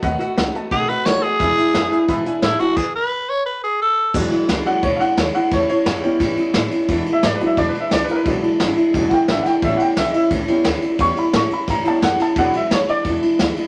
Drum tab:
CC |--------|--------|x-------|x-------|
RD |--------|--------|--------|-xxxxxxx|
HH |xxxxxxxx|xxxxxxxx|--------|--------|
SD |--o---o-|--o---o-|--------|o-o---o-|
BD |o---o---|o---o---|o-------|o---o---|

CC |--------|--------|--------|--------|
RD |xxxxxxxx|xxxxxxxx|xxxxxxxx|xxxxxxxx|
HH |--------|--------|--------|--------|
SD |o-o-o-o-|o-o---o-|--o---oo|--o---o-|
BD |o---o---|o---o---|o---oo--|o---o---|

CC |--------|--------|
RD |xxxxxxxx|xxxxxxxx|
HH |--------|--------|
SD |--o-o-oo|--o---o-|
BD |o---o---|o---o---|